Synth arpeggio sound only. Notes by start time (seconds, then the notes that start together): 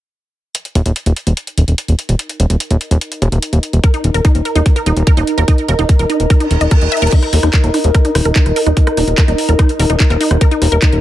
3.84 A#4
3.94 D#4
4.14 A#4
4.25 D#4
4.45 A#4
4.56 D#4
4.76 A#4
4.86 D#4
5.07 A#4
5.17 D#4
5.38 A#4
5.48 D#4
5.69 A#4
5.79 D#4
5.99 A#4
6.10 D#4
6.30 A#4
6.40 D#4
6.61 D#5
6.71 A#4
6.92 E5
7.02 A#4
7.12 D#4
7.33 A#4
7.43 D#4
7.64 A#4
7.74 D#4
7.95 A#4
8.05 D#4
8.25 A#4
8.36 D#4
8.56 A#4
8.66 D#4
8.87 A#4
8.97 D#4
9.18 A#4
9.28 D#4
9.49 A#4
9.59 D#4
9.79 A#4
9.90 D#4
10.10 A#4
10.21 D#4
10.41 A#4
10.51 D#4
10.72 A#4
10.82 D#4